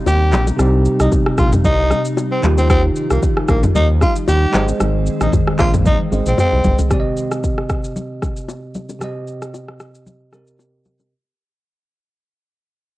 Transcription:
Already playing: C3 G3 C4 D#4 G4
0.06 D#2 G4, high bongo, shaker
0.32 A#1, clap, high bongo, low conga, shaker
0.47 high bongo, low bongo, shaker
0.57 C2 C3 C4 D#4, cross-stick, low conga, shaker
0.62 G4
0.85 shaker
1.00 C2 D#4, cross-stick, shaker
1.12 kick, high bongo, shaker
1.26 cross-stick
1.38 A#1 F4, kick, cross-stick, low bongo, shaker
1.53 mid tom, low bongo, shaker
1.64 C2 D#4, kick, low conga, shaker
1.91 cross-stick, low bongo, shaker
2.05 shaker
2.17 high bongo, shaker
2.31 C4
2.41 D#2 D#3 F3 D#4 F4, clap, high bongo, low conga, shaker
2.46 G4
2.58 C4, high bongo, low bongo, shaker
2.70 C4, kick, cross-stick, low conga, shaker
2.96 shaker
3.10 C2 A#3, cross-stick, shaker
3.23 kick, high bongo, shaker
3.37 cross-stick
3.48 A#1 A#3, kick, cross-stick, low bongo, shaker
3.63 mid tom, low bongo, shaker
3.75 D#2 D#4, low conga, shaker
4.01 F4, kick, cross-stick, low bongo, shaker
4.16 shaker
4.28 D#2 G4, high bongo, shaker
4.52 G#1 D#3 G#3 C4 G#4 C5, clap, high bongo, low conga, shaker
4.57 D#5
4.68 high bongo, low bongo, shaker
4.80 G#1, cross-stick, low conga, shaker
5.07 shaker
5.21 A#1 D#4, cross-stick, shaker
5.32 kick, mid tom, high bongo, shaker
5.48 cross-stick
5.59 A#1 F4, kick, cross-stick, clap, low bongo, shaker
5.74 mid tom, low bongo, shaker
5.86 D#4, kick, high tom, low conga, shaker
6.00 high tom
6.11 G#1 G#3 G#4 C5 D#5, low bongo, shaker
6.26 A#1 C4, mid tom, shaker
6.38 C4, mid tom, high bongo, shaker
6.53 C2
6.64 G1, floor tom, high bongo, low conga, shaker
6.79 floor tom, high bongo, low bongo, shaker
6.88 C3 C4 G4, kick, cross-stick, low conga, shaker
6.93 D5
7.00 D#5
7.17 shaker
7.31 cross-stick, shaker
7.44 kick, high bongo, shaker
7.58 cross-stick
7.69 kick, cross-stick, shaker
7.84 shaker
7.96 low conga, shaker
8.22 kick, cross-stick, low bongo, shaker
8.36 shaker
8.48 high bongo, shaker
8.74 high bongo, low conga, shaker
8.89 high bongo, low bongo, shaker
8.99 C3 C4 G4, cross-stick, low conga, shaker
9.04 D#5
9.27 shaker
9.42 cross-stick, shaker
9.54 high bongo, shaker
9.68 cross-stick
9.80 cross-stick, shaker
9.95 shaker
10.07 low conga, shaker
10.32 C3 C4 G4 A#4, cross-stick, low bongo, shaker
10.47 shaker
10.59 high bongo, shaker
10.85 high bongo, low conga, shaker
11.00 high bongo, low bongo, shaker

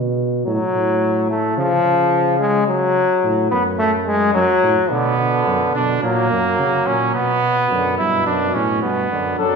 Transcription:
Already playing: B2
0.47 A2 F#3
0.74 A2
1.30 A3
1.57 C#3 F3
1.85 C#3
2.39 G#3
2.67 F#3
3.24 A2
3.51 F#2 B3
3.79 A3
4.07 G#3
4.35 F#2 F#3
4.63 A2
4.90 B2 D3 B3
5.19 D3
5.47 F#2
5.75 B2 D4
6.03 A#2 F#3 A#3
6.30 F#2 F#3
6.59 C#3
6.87 A#2 C#4
7.14 B2 B3
7.71 F#2 D3
7.98 G2 B2 E4
8.26 F#2 D4
8.54 A2 C#4
8.82 G2 B2 B3
9.11 F#2 D3
9.38 F#2 F#3 D4 A4

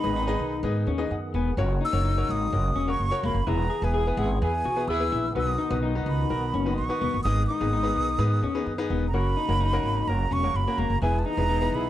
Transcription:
Already playing: G#2 D#3 B3 G#4 B5
0.03 G#1 D#4 G#4 B4 D#5
0.16 D#4
0.27 D#4 G#4 B4 D#5
0.39 B1
0.63 G#2 D#4 G#4 B4 D#5
0.87 D#2 C#4
0.98 D#4 G#4 B4 D#5
1.11 F#2 F#5 D#6
1.34 E1 B3 B4 G#5
1.57 F#1 C#3 A#3 C#4 F#4 A#4 C#5
1.81 D#4 E6
1.93 F#1 C#4 F#4 A#4 C#5
2.05 D#4
2.17 C#4 F#4 A#4 C#5
2.29 G#1 D#6
2.52 F#1 C#4 F#4 A#4 D#5
2.75 E1 C#4
2.88 C#4 F#4 A#4 C#5 C#6
3.00 F#1
3.11 C#4 F#4 A#4 C#5
3.23 E1 A#3 B5
3.34 F#1
3.47 E1 E3 B3 E4 G#4 B4 A#5
3.70 G#4
3.82 E1 B3 E4 G#4 B4 G#5
3.94 B3 E4 G#4
4.07 B3 E4 G#4 B4
4.17 G#1 B3 E4 G#4 F#5
4.42 E2 B3 E4 G#4 B4 G#5
4.65 B1 F#4
4.77 B3 E4 G#4 B4
4.88 D#2 B3 E4 G#4 E6
5.00 B3 E4 G#4 B4
5.12 A#1 E4
5.34 B1 B2 D#3 B3 D#4 F#4 B4 D#6
5.58 D#4
5.70 B1 B3 D#4 F#4 B4
5.83 D#4
5.95 B3 D#4 F#4 B4
6.06 C#2 B5
6.30 B1 B3 D#4 F#4 A#4
6.54 F#1 C#4
6.66 B3 D#4 F#4 B4
6.76 A#1 C#6
6.89 B3 D#4 F#4 B4
7.01 E1 B3
7.14 F#1
7.23 G#1 G#2 G#3 B3 D#4 G#4 B4 D#6
7.47 D#4 D#6
7.60 G#1 B3 D#4 G#4 B4
7.73 D#4
7.83 B3 D#4 G#4 B4
7.96 B1
8.19 G#2 B3 D#4 G#4 B4
8.42 D#2 C#4
8.55 B3 D#4 G#4 B4
8.66 F#2
8.78 B3 D#4 G#4 B4
8.90 E1 B3
9.08 A#5
9.13 F#1 C#3 A#3 C#4 F#4 A#4 B5
9.37 D#4
9.49 F#1 A#3 C#4 F#4 A#4
9.60 D#4
9.73 A#3 C#4 F#4 A#4
9.83 G#1
10.07 F#1 A#3 C#4 F#4 A#4 A#5
10.31 E1 C#4 C#6
10.43 A#3 C#4 F#4 A#4
10.54 F#1 B5
10.67 A#3 C#4 F#4 A#4
10.78 E1 A#3 A#5
10.90 F#1
11.02 E1 E3 B3 E4 G#4 B4 G#5
11.19 A5
11.25 D#4 A#5
11.37 E1 B3 E4 G#4 B4
11.49 B3 D#4 E4 G#4
11.61 B3 E4 G#4 B4
11.72 B1 B3 E4 G#4 B5

